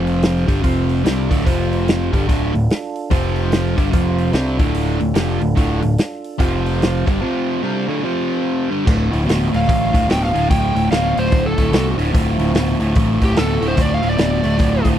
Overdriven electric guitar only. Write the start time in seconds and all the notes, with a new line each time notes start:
Already playing: F2 C3 F3
0.47 G2 D3 G3
0.62 F2 C3 F3
1.04 C3 G3 C4
1.29 D2 A2 D3
1.45 F2 C3 F3
2.12 G2 D3 G3
2.28 D2 A2 D3
2.53 D2 A2
3.10 F2 C3 F3
3.77 G2 D3 G3
3.92 F2 C3 F3
4.33 C3 G3 C4
4.58 D2 A2 D3
5.00 D2 A2
5.14 F2 C3 F3
5.40 D2 A2
5.56 D2 A2 D3
5.82 D2 A2
6.38 F2 C3 F3
7.05 G2 D3 G3
7.21 F2 C3 F3
7.63 C3 G3 C4
7.88 D2 A2 D3
8.04 F2 C3 F3
8.71 G2 D3 G3
8.86 D2 A2
9.11 D2 A2
9.25 D2 B2
9.51 D2 A2
9.67 D2 A2
9.92 D2 A2
10.08 D2 B2
10.33 D2 A2
10.49 D2 A2
10.75 D2 A2
10.90 D2 B2
11.16 D2 A2
11.31 D2 A2
11.57 D2 A2
11.72 D2 B2
11.97 D2 A2
12.12 D2 A2
12.38 D2 A2
12.54 D2 B2
12.80 D2 A2
12.95 D2 A2
13.20 D2 A2
13.36 D2 B2
13.61 D2 A2
13.76 D2 A2
14.03 D2 A2
14.17 D2 B2
14.43 D2 A2
14.58 D2 A2
14.84 D2 A2